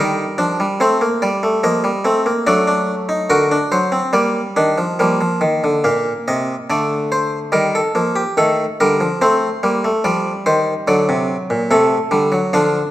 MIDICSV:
0, 0, Header, 1, 2, 480
1, 0, Start_track
1, 0, Tempo, 834492
1, 1413, Time_signature, 4, 2, 24, 8
1, 2380, Tempo, 846262
1, 5260, Tempo, 831025
1, 7394, End_track
2, 0, Start_track
2, 0, Title_t, "Harpsichord"
2, 0, Program_c, 0, 6
2, 0, Note_on_c, 0, 51, 66
2, 0, Note_on_c, 0, 55, 64
2, 0, Note_on_c, 0, 63, 79
2, 0, Note_on_c, 0, 70, 62
2, 131, Note_off_c, 0, 51, 0
2, 132, Note_off_c, 0, 63, 0
2, 220, Note_on_c, 0, 53, 76
2, 220, Note_on_c, 0, 62, 87
2, 335, Note_off_c, 0, 53, 0
2, 339, Note_off_c, 0, 55, 0
2, 345, Note_on_c, 0, 55, 74
2, 367, Note_off_c, 0, 62, 0
2, 447, Note_off_c, 0, 70, 0
2, 458, Note_off_c, 0, 55, 0
2, 461, Note_on_c, 0, 57, 74
2, 464, Note_on_c, 0, 60, 85
2, 466, Note_on_c, 0, 72, 71
2, 577, Note_off_c, 0, 60, 0
2, 583, Note_on_c, 0, 58, 81
2, 608, Note_off_c, 0, 57, 0
2, 611, Note_off_c, 0, 72, 0
2, 703, Note_on_c, 0, 74, 68
2, 705, Note_on_c, 0, 55, 76
2, 729, Note_off_c, 0, 58, 0
2, 824, Note_on_c, 0, 57, 79
2, 848, Note_off_c, 0, 74, 0
2, 935, Note_off_c, 0, 57, 0
2, 941, Note_on_c, 0, 53, 67
2, 942, Note_on_c, 0, 75, 74
2, 944, Note_on_c, 0, 58, 84
2, 1052, Note_off_c, 0, 55, 0
2, 1053, Note_off_c, 0, 53, 0
2, 1059, Note_on_c, 0, 55, 68
2, 1089, Note_off_c, 0, 58, 0
2, 1172, Note_off_c, 0, 55, 0
2, 1177, Note_on_c, 0, 57, 75
2, 1180, Note_on_c, 0, 60, 86
2, 1291, Note_off_c, 0, 57, 0
2, 1301, Note_on_c, 0, 58, 75
2, 1327, Note_off_c, 0, 60, 0
2, 1403, Note_off_c, 0, 75, 0
2, 1414, Note_off_c, 0, 58, 0
2, 1419, Note_on_c, 0, 57, 81
2, 1419, Note_on_c, 0, 62, 96
2, 1420, Note_on_c, 0, 54, 82
2, 1420, Note_on_c, 0, 74, 79
2, 1533, Note_off_c, 0, 62, 0
2, 1539, Note_on_c, 0, 62, 81
2, 1687, Note_off_c, 0, 62, 0
2, 1777, Note_on_c, 0, 63, 89
2, 1885, Note_off_c, 0, 54, 0
2, 1885, Note_off_c, 0, 74, 0
2, 1893, Note_off_c, 0, 63, 0
2, 1896, Note_on_c, 0, 50, 76
2, 1896, Note_on_c, 0, 66, 88
2, 1898, Note_on_c, 0, 70, 73
2, 2013, Note_off_c, 0, 66, 0
2, 2022, Note_on_c, 0, 62, 89
2, 2046, Note_off_c, 0, 50, 0
2, 2047, Note_off_c, 0, 70, 0
2, 2138, Note_on_c, 0, 72, 83
2, 2139, Note_on_c, 0, 54, 90
2, 2170, Note_off_c, 0, 62, 0
2, 2255, Note_on_c, 0, 60, 88
2, 2288, Note_off_c, 0, 72, 0
2, 2289, Note_off_c, 0, 54, 0
2, 2359, Note_off_c, 0, 57, 0
2, 2374, Note_off_c, 0, 60, 0
2, 2375, Note_on_c, 0, 55, 80
2, 2377, Note_on_c, 0, 74, 79
2, 2378, Note_on_c, 0, 58, 94
2, 2528, Note_off_c, 0, 58, 0
2, 2622, Note_on_c, 0, 62, 96
2, 2623, Note_on_c, 0, 51, 79
2, 2739, Note_off_c, 0, 51, 0
2, 2743, Note_on_c, 0, 53, 76
2, 2771, Note_off_c, 0, 62, 0
2, 2847, Note_off_c, 0, 55, 0
2, 2859, Note_off_c, 0, 53, 0
2, 2866, Note_on_c, 0, 58, 88
2, 2869, Note_on_c, 0, 55, 81
2, 2870, Note_on_c, 0, 53, 75
2, 2980, Note_off_c, 0, 53, 0
2, 2983, Note_off_c, 0, 55, 0
2, 2987, Note_on_c, 0, 53, 73
2, 3102, Note_on_c, 0, 51, 77
2, 3103, Note_off_c, 0, 53, 0
2, 3221, Note_off_c, 0, 51, 0
2, 3231, Note_on_c, 0, 50, 77
2, 3324, Note_off_c, 0, 74, 0
2, 3335, Note_off_c, 0, 58, 0
2, 3346, Note_on_c, 0, 58, 67
2, 3347, Note_off_c, 0, 50, 0
2, 3348, Note_on_c, 0, 46, 69
2, 3348, Note_on_c, 0, 77, 75
2, 3498, Note_off_c, 0, 46, 0
2, 3498, Note_off_c, 0, 77, 0
2, 3594, Note_on_c, 0, 75, 74
2, 3596, Note_on_c, 0, 48, 62
2, 3741, Note_off_c, 0, 75, 0
2, 3742, Note_off_c, 0, 48, 0
2, 3814, Note_off_c, 0, 58, 0
2, 3832, Note_on_c, 0, 50, 62
2, 3832, Note_on_c, 0, 57, 66
2, 3835, Note_on_c, 0, 74, 71
2, 3981, Note_off_c, 0, 74, 0
2, 4071, Note_on_c, 0, 72, 80
2, 4218, Note_off_c, 0, 72, 0
2, 4294, Note_off_c, 0, 50, 0
2, 4294, Note_off_c, 0, 57, 0
2, 4299, Note_on_c, 0, 55, 62
2, 4300, Note_on_c, 0, 51, 67
2, 4303, Note_on_c, 0, 70, 72
2, 4421, Note_off_c, 0, 70, 0
2, 4429, Note_on_c, 0, 69, 65
2, 4450, Note_off_c, 0, 51, 0
2, 4450, Note_off_c, 0, 55, 0
2, 4543, Note_on_c, 0, 58, 69
2, 4545, Note_on_c, 0, 53, 72
2, 4576, Note_off_c, 0, 69, 0
2, 4659, Note_on_c, 0, 67, 69
2, 4692, Note_off_c, 0, 58, 0
2, 4693, Note_off_c, 0, 53, 0
2, 4778, Note_off_c, 0, 67, 0
2, 4783, Note_on_c, 0, 51, 65
2, 4783, Note_on_c, 0, 57, 65
2, 4785, Note_on_c, 0, 69, 70
2, 4931, Note_off_c, 0, 51, 0
2, 4931, Note_off_c, 0, 57, 0
2, 4933, Note_off_c, 0, 69, 0
2, 5027, Note_on_c, 0, 70, 78
2, 5028, Note_on_c, 0, 55, 70
2, 5029, Note_on_c, 0, 50, 68
2, 5140, Note_on_c, 0, 53, 69
2, 5141, Note_off_c, 0, 55, 0
2, 5173, Note_off_c, 0, 70, 0
2, 5175, Note_off_c, 0, 50, 0
2, 5257, Note_off_c, 0, 53, 0
2, 5259, Note_on_c, 0, 60, 70
2, 5261, Note_on_c, 0, 57, 91
2, 5262, Note_on_c, 0, 72, 74
2, 5410, Note_off_c, 0, 60, 0
2, 5411, Note_off_c, 0, 57, 0
2, 5502, Note_on_c, 0, 55, 83
2, 5502, Note_on_c, 0, 58, 67
2, 5620, Note_off_c, 0, 58, 0
2, 5624, Note_on_c, 0, 57, 66
2, 5652, Note_off_c, 0, 55, 0
2, 5730, Note_off_c, 0, 72, 0
2, 5739, Note_on_c, 0, 53, 80
2, 5739, Note_on_c, 0, 55, 66
2, 5739, Note_on_c, 0, 74, 68
2, 5741, Note_off_c, 0, 57, 0
2, 5891, Note_off_c, 0, 53, 0
2, 5891, Note_off_c, 0, 74, 0
2, 5980, Note_on_c, 0, 51, 85
2, 5980, Note_on_c, 0, 72, 78
2, 6131, Note_off_c, 0, 51, 0
2, 6131, Note_off_c, 0, 72, 0
2, 6209, Note_off_c, 0, 55, 0
2, 6219, Note_on_c, 0, 50, 85
2, 6219, Note_on_c, 0, 54, 70
2, 6220, Note_on_c, 0, 74, 72
2, 6338, Note_off_c, 0, 50, 0
2, 6343, Note_on_c, 0, 48, 77
2, 6491, Note_off_c, 0, 48, 0
2, 6581, Note_on_c, 0, 46, 79
2, 6685, Note_off_c, 0, 54, 0
2, 6685, Note_off_c, 0, 74, 0
2, 6698, Note_off_c, 0, 46, 0
2, 6699, Note_on_c, 0, 57, 71
2, 6700, Note_on_c, 0, 48, 85
2, 6702, Note_on_c, 0, 69, 69
2, 6848, Note_off_c, 0, 57, 0
2, 6849, Note_off_c, 0, 48, 0
2, 6933, Note_on_c, 0, 50, 88
2, 6935, Note_on_c, 0, 55, 72
2, 7053, Note_on_c, 0, 54, 71
2, 7054, Note_off_c, 0, 55, 0
2, 7084, Note_off_c, 0, 50, 0
2, 7166, Note_off_c, 0, 69, 0
2, 7173, Note_off_c, 0, 54, 0
2, 7177, Note_on_c, 0, 53, 77
2, 7177, Note_on_c, 0, 77, 84
2, 7180, Note_on_c, 0, 62, 81
2, 7181, Note_on_c, 0, 50, 81
2, 7327, Note_off_c, 0, 53, 0
2, 7327, Note_off_c, 0, 77, 0
2, 7330, Note_off_c, 0, 50, 0
2, 7394, Note_off_c, 0, 62, 0
2, 7394, End_track
0, 0, End_of_file